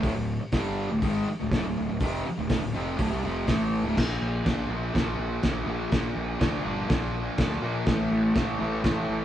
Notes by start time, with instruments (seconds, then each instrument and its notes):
0.03 picked electric bass D1, distorted electric guitar D2 A2, kick, open hi-hat
0.14 picked electric bass D1, distorted electric guitar D2 A2
0.40 muted distorted electric guitar stroke, muted picked electric bass stroke
0.52 picked electric bass G1, distorted electric guitar G2 D3 G3, kick, snare, open hi-hat
0.89 picked electric bass D1, distorted electric guitar D2 A2
1.01 picked electric bass G#1, distorted electric guitar G#2 D#3 G#3, kick, open hi-hat
1.27 muted distorted electric guitar stroke, muted picked electric bass stroke
1.40 picked electric bass D1, distorted electric guitar D2 A2
1.52 picked electric bass D1, distorted electric guitar D2 A2, kick, snare, open hi-hat
1.65 picked electric bass D1, distorted electric guitar D2 A2
1.77 picked electric bass D1, distorted electric guitar D2 A2
1.89 picked electric bass D1, distorted electric guitar D2 A2
2.00 picked electric bass F1, distorted electric guitar F2 C3 F3, kick, open hi-hat
2.26 muted distorted electric guitar stroke, muted picked electric bass stroke
2.37 picked electric bass D1, distorted electric guitar D2 A2
2.49 picked electric bass D1, distorted electric guitar D2 A2, kick, snare, open hi-hat
2.62 picked electric bass D1, distorted electric guitar D2 A2
2.73 picked electric bass F1, distorted electric guitar F2 C3 F3
2.98 picked electric bass D1, distorted electric guitar D2 A2, kick, open hi-hat
3.10 picked electric bass C2, distorted electric guitar C3 G3
3.23 picked electric bass F1, distorted electric guitar F2 C3 F3
3.46 picked electric bass A1, distorted electric guitar A2 E3 A3, kick, snare, open hi-hat
3.84 picked electric bass D1, distorted electric guitar D2 A2
3.96 picked electric bass A#1, distorted electric guitar A#2 F3 A#3, kick, snare, crash
4.21 picked electric bass A#1
4.44 picked electric bass A#1, distorted electric guitar A#2 F3 A#3, kick, snare, crash
4.69 picked electric bass A#1, distorted electric guitar A#2 F3 A#3
4.94 picked electric bass A#1, distorted electric guitar A#2 F3 A#3, kick, snare, crash
5.19 picked electric bass A#1
5.43 picked electric bass A#1, distorted electric guitar A#2 F3 A#3, kick, snare, crash
5.67 picked electric bass A#1, distorted electric guitar A#2 F3 A#3
5.91 picked electric bass A#1, distorted electric guitar A#2 F3 A#3, kick, snare, crash
6.16 picked electric bass A#1
6.40 picked electric bass D2, distorted electric guitar A#2 F3 A#3, kick, snare, crash
6.64 picked electric bass G1, distorted electric guitar A#2 F3 A#3
6.89 picked electric bass A#1, distorted electric guitar A#2 F3 A#3, kick, snare, crash
7.38 picked electric bass D2, distorted electric guitar A#2 F3 A#3, kick, snare, crash
7.62 distorted electric guitar A#2 F3 A#3, picked electric bass A#2
7.86 picked electric bass A1, distorted electric guitar A2 E3 A3, kick, snare, crash
8.11 picked electric bass A1
8.35 picked electric bass A1, distorted electric guitar A2 E3 A3, kick, snare, crash
8.59 picked electric bass A1, distorted electric guitar A2 E3 A3
8.83 picked electric bass A1, distorted electric guitar A2 E3 A3, kick, snare, crash
9.10 picked electric bass A1